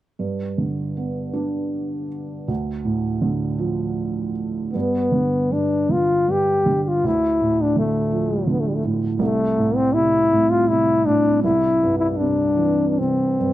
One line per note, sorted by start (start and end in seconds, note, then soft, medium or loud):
0.19 2.45 G2 soft
0.58 2.07 D3 soft
0.97 2.45 B3 soft
1.33 2.45 D4 soft
2.48 4.70 D2 medium
2.85 4.31 A2 soft
3.22 4.70 D3 soft
3.58 4.70 F3 soft
4.73 5.50 G2 soft
4.73 5.54 B3 medium
5.12 5.88 D3 soft
5.51 6.26 G2 soft
5.51 5.94 D4 medium
5.89 6.64 D3 soft
5.89 6.33 F4 medium
6.28 7.02 G2 soft
6.28 6.84 G4 medium
6.66 7.03 D3 soft
6.84 6.89 G4 soft
6.88 7.08 F4 medium
7.04 9.16 D2 soft
7.04 7.63 E4 medium
7.41 8.80 A2 soft
7.61 7.78 D4 medium
7.76 8.46 D3 soft
7.76 8.52 A3 medium
8.11 9.16 F3 soft
8.47 9.17 D3 soft
8.47 8.62 B3 soft
8.60 8.69 A3 medium
8.68 8.76 G3 soft
8.75 8.84 A3 soft
8.84 9.19 A2 soft
9.19 11.38 C2 medium
9.19 9.77 A3 medium
9.58 10.30 A2 soft
9.75 9.95 C4 medium
9.93 10.67 C3 soft
9.93 10.52 E4 medium
10.32 11.05 A2 soft
10.50 10.70 F4 medium
10.69 11.41 C3 soft
10.69 11.07 E4 medium
11.06 11.42 A2 soft
11.06 11.43 D4 medium
11.43 13.53 C2 medium
11.43 11.95 E4 medium
11.83 13.36 G2 soft
11.99 12.11 E4 medium
12.11 12.18 E4 soft
12.17 12.97 C3 soft
12.17 12.89 D4 medium
12.57 13.53 E3 soft
12.89 13.00 D4 soft
12.98 13.53 C3 soft
12.98 13.53 C4 medium
13.39 13.53 G2 soft